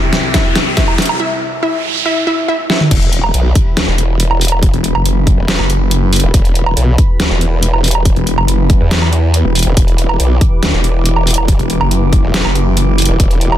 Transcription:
Already playing: C2 C3 G3 E4 G4 E5, riser
0.13 snare, closed hi-hat
0.34 E4 E5, kick, snare, closed hi-hat
0.56 snare, closed hi-hat
0.77 E4 E5, kick, snare, closed hi-hat
0.88 low woodblock
0.98 snare, closed hi-hat
1.02 closed hi-hat
1.06 closed hi-hat, low woodblock
1.20 E4 E5, noise sweep
1.63 E4 E5
2.06 E4 E5
2.27 E4 E5
2.48 E4 E5
2.70 E4 E5, snare
2.81 mid tom
2.91 E1 E3 E4 G4 B4 B5, kick, closed hi-hat, crash, impact
3.02 closed hi-hat
3.13 closed hi-hat
3.24 low woodblock
3.34 B1, closed hi-hat
3.55 kick, closed hi-hat
3.77 D2, snare, closed hi-hat
3.88 E1
3.98 closed hi-hat
4.20 closed hi-hat
4.31 low woodblock
4.41 closed hi-hat, open hi-hat
4.48 closed hi-hat, low woodblock
4.63 kick, closed hi-hat
4.74 E1, closed hi-hat
4.84 closed hi-hat
4.95 F#1, low woodblock
5.05 closed hi-hat
5.27 kick, closed hi-hat
5.38 E1
5.48 snare, closed hi-hat
5.59 F#1, low woodblock
5.70 closed hi-hat
5.91 closed hi-hat
6.13 closed hi-hat, open hi-hat
6.20 E1, closed hi-hat
6.34 E1, kick, closed hi-hat
6.45 closed hi-hat
6.55 closed hi-hat
6.66 low woodblock
6.77 B1, closed hi-hat
6.98 kick, closed hi-hat
7.20 D2, snare, closed hi-hat
7.31 E1
7.41 closed hi-hat
7.63 closed hi-hat
7.74 low woodblock
7.84 closed hi-hat, open hi-hat
7.91 closed hi-hat, low woodblock
8.05 kick, closed hi-hat
8.16 E1, closed hi-hat
8.27 closed hi-hat
8.38 F#1, low woodblock
8.48 closed hi-hat
8.70 kick, closed hi-hat
8.81 E2
8.91 snare, closed hi-hat
9.02 low woodblock
9.13 closed hi-hat
9.34 closed hi-hat
9.45 E1
9.55 closed hi-hat, open hi-hat
9.63 E1, closed hi-hat
9.77 E1 D6, kick, closed hi-hat
9.88 closed hi-hat
9.98 closed hi-hat
10.09 low woodblock
10.20 B1, closed hi-hat
10.41 kick, closed hi-hat
10.63 D2, snare, closed hi-hat
10.74 E1
10.84 closed hi-hat
11.06 closed hi-hat
11.16 low woodblock
11.27 closed hi-hat, open hi-hat
11.34 closed hi-hat, low woodblock
11.48 kick, closed hi-hat
11.59 E1, closed hi-hat
11.70 closed hi-hat
11.81 F#1, low woodblock
11.91 closed hi-hat
12.13 kick, closed hi-hat
12.24 E1
12.34 snare, closed hi-hat
12.45 F#1, low woodblock
12.55 closed hi-hat
12.77 closed hi-hat
12.98 closed hi-hat, open hi-hat
13.05 E1, closed hi-hat
13.20 E1, kick, closed hi-hat
13.31 closed hi-hat
13.41 closed hi-hat
13.52 low woodblock

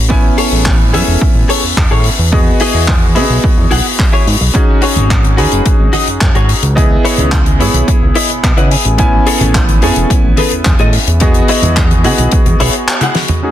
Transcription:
Already playing: A1
0.09 B3 C#4 E4 G#5, kick
0.38 G#4 A4 C#5, open hi-hat
0.52 A1
0.66 kick, clap
0.92 F#2 B3 C#4 E4 G#4 A4 E5 G#5, open hi-hat
1.08 E1
1.21 A1, kick
1.35 A1
1.49 G#4 A4 C#5, open hi-hat
1.63 E2
1.77 E2, muted clean electric guitar stroke, kick, clap
1.91 A2 G#4 A4 C#5
2.04 open hi-hat
2.19 E2, muted clean electric guitar stroke
2.32 B3 F#4 G#4 D#5, kick
2.60 E4 G#4 D#5, open hi-hat
2.74 E2
2.88 kick, clap
3.15 C#3 B3 E4 F#4 G#4 B4 D#5, open hi-hat
3.30 B1
3.44 kick
3.58 E2
3.71 B1 E4 G#4 F#5, open hi-hat
3.99 muted clean electric guitar stroke, kick, clap
4.12 E4 G#4 C#5
4.27 G#2, open hi-hat
4.41 B1, muted clean electric guitar stroke
4.54 C#4 D#4 F#4 G#4, kick, closed hi-hat
4.82 F#4 G#4 C#5, open hi-hat
4.96 G#1, closed hi-hat, high conga, low conga
5.10 kick, clap, closed hi-hat
5.23 closed hi-hat, high conga
5.37 D#2 C#4 D#4 F#4 G#4 B4, open hi-hat
5.52 F#1, closed hi-hat
5.66 G#1, kick, closed hi-hat
5.80 G#1
5.93 F#4 G#4 D#5, open hi-hat, high conga
6.07 F#2, closed hi-hat
6.21 F#2, muted clean electric guitar stroke, kick, clap, closed hi-hat
6.35 G#2 F#4 G#4 C#5, closed hi-hat
6.49 open hi-hat
6.63 C#2, muted clean electric guitar stroke, closed hi-hat
6.75 B3 E4 G#4 D#5, kick, closed hi-hat
7.05 E4 B4 C#5, open hi-hat
7.18 C#2, closed hi-hat, high conga, low conga
7.32 kick, clap, closed hi-hat
7.46 closed hi-hat, high conga
7.59 G#2 B3 E4 G#4 B4 C#5, open hi-hat
7.74 B1, closed hi-hat, high conga
7.88 kick, closed hi-hat
8.02 C#2
8.15 E4 B4 C#5 D#5, open hi-hat
8.30 B2, closed hi-hat
8.43 B2 E5, muted clean electric guitar stroke, kick, clap, closed hi-hat
8.57 C#3 E4 B4 D#5 F#5, closed hi-hat
8.71 G#5, open hi-hat
8.85 A1, muted clean electric guitar stroke, closed hi-hat
8.98 B3 C#4 E4 G#5, kick, closed hi-hat
9.27 G#4 A4 C#5, open hi-hat
9.41 A1, closed hi-hat, high conga, low conga
9.55 kick, clap, closed hi-hat
9.69 closed hi-hat, high conga
9.81 F#2 B3 C#4 E4 G#4 A4 C#5 G#5, open hi-hat
9.96 E1, closed hi-hat
10.10 A1, kick, closed hi-hat
10.24 A1
10.37 G#4 A4 B4, open hi-hat, high conga
10.51 E2, closed hi-hat
10.65 E2, muted clean electric guitar stroke, kick, clap, closed hi-hat
10.79 A2 G#4 A4 D#5, closed hi-hat
10.93 open hi-hat
11.07 E2, muted clean electric guitar stroke, closed hi-hat
11.20 B3 F#4 G#4 D#5, kick, closed hi-hat
11.34 closed hi-hat
11.48 E4 G#4 D#5, open hi-hat
11.62 E2, closed hi-hat, high conga, low conga
11.76 kick, clap, closed hi-hat
11.91 closed hi-hat, high conga
12.03 C#3 B3 E4 F#4 G#4 D#5 F#5, open hi-hat
12.18 B1, closed hi-hat, high conga
12.31 kick, closed hi-hat
12.46 E2, closed hi-hat, low conga
12.60 B1 E4 G#4 C#5, open hi-hat
12.73 closed hi-hat
12.88 muted clean electric guitar stroke, clap, closed hi-hat
13.01 E4 G#4 F#5, clap, closed hi-hat, high tom
13.15 snare, open hi-hat
13.28 muted clean electric guitar stroke, closed hi-hat, mid tom
13.43 G#3 C#4 D#4 F#4 G#4 C#5

